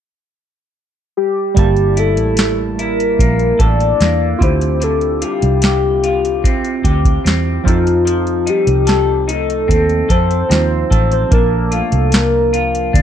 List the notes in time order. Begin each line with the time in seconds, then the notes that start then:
1.17 G4
1.54 G1 G3 A#3 E4, kick, closed hi-hat
1.59 A5
1.77 closed hi-hat
1.97 E4 A4, closed hi-hat
2.17 A1, closed hi-hat
2.37 snare, closed hi-hat
2.79 E4 A#4, closed hi-hat
3.00 closed hi-hat
3.19 A#1 A#3, kick, closed hi-hat
3.39 closed hi-hat
3.59 A1 A4 D5, kick, closed hi-hat
3.80 closed hi-hat
4.00 E2 A#3, snare, closed hi-hat
4.38 D2 D3 C4 E4 F4, kick, closed hi-hat
4.43 G4 C5
4.61 closed hi-hat
4.81 D3 A4, closed hi-hat
5.01 closed hi-hat
5.22 F4 G4, closed hi-hat
5.42 C2, closed hi-hat
5.62 G4, snare, closed hi-hat
6.04 F4, closed hi-hat
6.25 closed hi-hat
6.44 C4, kick, closed hi-hat
6.65 closed hi-hat
6.84 D2 G4, kick, closed hi-hat
7.05 kick, closed hi-hat
7.24 E2 C4, snare, closed hi-hat
7.64 F2 F3 C4 D#4, kick
7.68 F4 A4, closed hi-hat
7.87 closed hi-hat
8.05 F3, closed hi-hat
8.27 closed hi-hat
8.46 D#4 G4, closed hi-hat
8.67 C2, closed hi-hat
8.87 A4, snare, closed hi-hat
9.28 D#4 A4, closed hi-hat
9.50 closed hi-hat
9.68 D#2 C4, kick, closed hi-hat
9.89 closed hi-hat
10.09 F2 A4 C5, kick, closed hi-hat
10.31 closed hi-hat
10.49 D#2 F3 C4 D#4 F4, snare, closed hi-hat
10.91 A1 A4, kick, closed hi-hat
11.12 C5, closed hi-hat
11.29 A#1 F3 A#3 D4, kick, closed hi-hat
11.33 A#4 A5
11.71 F4 A4, closed hi-hat
11.92 C2, closed hi-hat
12.12 A#4, snare, closed hi-hat
12.53 F4, closed hi-hat
12.75 closed hi-hat
12.93 D2 D4, kick, closed hi-hat